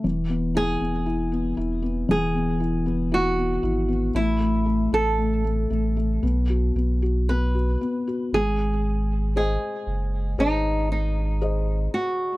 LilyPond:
<<
  \new Staff \with { instrumentName = "Nylon-string guitar" } { \time 4/4 \key gis \phrygian \tempo 4 = 58 r8 gis'4 r8 gis'4 fis'4 | e'8. a'2~ a'16 b'4 | gis'4 gis'4 dis'8 dis'4 fis'8 | }
  \new Staff \with { instrumentName = "Felt piano" } { \time 4/4 \key gis \phrygian e16 b16 e'16 b16 e'16 b16 e'16 b16 e16 b16 e'16 b16 e'16 b16 e'16 b16 | a16 a16 a16 a16 a16 a16 a16 a16 b16 fis'16 b16 fis'16 b16 fis'16 b16 fis'16 | gis4 <gis' bis' dis''>4 <gis' bis' dis''>4 <gis' bis' dis''>4 | }
  \new Staff \with { instrumentName = "Sub bass" } { \clef bass \time 4/4 \key gis \phrygian e,,8. e,,8. e,,8 e,,4. gis,,8 | a,,8. a,,8. a,,8 b,,8 b,,4 r8 | gis,,4~ gis,,16 r16 fis,,8 gis,,4. r8 | }
>>